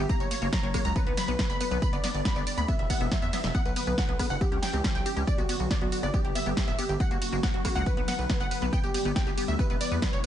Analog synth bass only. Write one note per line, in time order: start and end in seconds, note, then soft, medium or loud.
0.20 0.27 F#1 medium
0.42 0.49 F#1 medium
0.63 0.70 F#1 medium
0.85 0.92 C#2 medium
1.06 1.13 B1 medium
1.28 1.35 B1 medium
1.50 1.57 F#1 medium
1.71 1.78 B1 medium
1.93 2.00 G1 medium
2.14 2.21 G1 medium
2.36 2.43 G1 medium
2.57 2.64 D2 medium
2.79 2.86 E1 medium
3.01 3.08 E1 medium
3.22 3.29 E2 medium
3.44 3.51 E1 medium
3.65 3.72 B1 medium
3.87 3.94 B1 medium
4.09 4.16 B1 medium
4.30 4.37 F#1 medium
4.52 4.59 C#2 medium
4.73 4.80 C#2 medium
4.95 5.02 B1 medium
5.17 5.23 C#2 medium
5.38 5.45 B1 medium
5.60 5.67 B1 medium
5.81 5.88 B1 medium
6.03 6.10 F#1 medium
6.25 6.31 G1 medium
6.46 6.53 G1 medium
6.68 6.75 D1 medium
6.89 6.96 G1 medium
7.11 7.18 F#1 medium
7.33 7.39 F#1 medium
7.54 7.61 F#1 medium
7.76 7.83 C#2 medium
7.97 8.04 B1 medium
8.19 8.26 B1 medium
8.40 8.47 F#1 medium
8.62 8.69 B1 medium
8.84 8.90 G1 medium
9.05 9.12 G1 medium
9.27 9.34 G1 medium
9.48 9.55 D2 medium
9.70 9.77 E1 medium
9.92 9.98 E2 medium
10.13 10.20 E1 medium